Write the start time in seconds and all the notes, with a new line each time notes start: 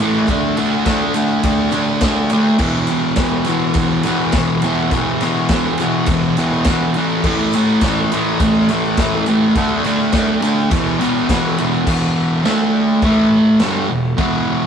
0.00 A2 E3 A3, ride
0.14 shaker
0.27 D3 A3, kick, ride, shaker
0.31 D4
0.57 D3 A3 D4, ride
0.85 D3 A3 D4, kick, snare, ride, shaker
1.14 D3 A3 D4, ride, shaker
1.43 D3 A3 D4, kick, ride, shaker
1.71 D3 A3 D4, ride, shaker
1.87 shaker
2.00 D3 A3, kick, snare, ride, shaker
2.05 D4
2.29 D3 A3 D4, ride, shaker
2.58 E2 B2 E3, kick, crash, shaker
2.87 E2 B2 E3, ride, shaker
3.16 E2 B2 E3, kick, snare, ride, shaker
3.44 E2 B2 E3, ride, shaker
3.74 E2 B2, kick, ride
3.78 E3, shaker
4.03 E2 B2 E3, ride, shaker
4.20 shaker
4.32 E2 B2 E3, kick, snare, ride, shaker
4.62 E2 B2 E3, ride, shaker
4.79 shaker
4.91 E2 B2 E3, kick, ride, shaker
5.21 E2 B2 E3, ride, shaker
5.49 E2 B2, kick, snare, ride, shaker
5.53 E3
5.78 E2 B2 E3, ride, shaker
6.06 E2 B2, kick, ride, shaker
6.11 E3
6.37 E2 B2 E3, ride, shaker
6.54 shaker
6.64 E2 B2, kick, snare, ride, shaker
6.69 E3
6.94 A2 E3 A3, ride
7.09 shaker
7.24 A2 E3 A3, kick, crash, shaker
7.52 A2 E3 A3, ride, shaker
7.81 A2, kick, snare, ride, shaker
7.85 E3 A3
8.12 A2 E3 A3, ride, shaker
8.40 A2 E3 A3, kick, ride, shaker
8.69 A2 E3 A3, ride, shaker
8.85 shaker
8.97 A2 E3 A3, kick, snare, ride, shaker
9.26 A2 E3 A3, ride, shaker
9.55 D3 A3 D4, kick, ride, shaker
9.84 D3 A3 D4, ride, shaker
10.00 shaker
10.12 D3 A3 D4, kick, snare, ride, shaker
10.41 D3 A3 D4, ride, shaker
10.59 shaker
10.70 E2 B2 E3, kick, ride
10.74 shaker
10.99 E2 B2 E3, ride, shaker
11.17 shaker
11.29 E2 B2 E3, kick, snare, ride, shaker
11.58 E2 B2 E3, ride
11.74 shaker
11.87 E2 B2 E3, kick, crash
12.44 D3 A3 D4, snare, crash
13.02 A2 E3 A3, kick, crash
13.59 G2 D3 G3, snare, crash
13.89 E2 B2
14.17 E2 B2 E3, kick, crash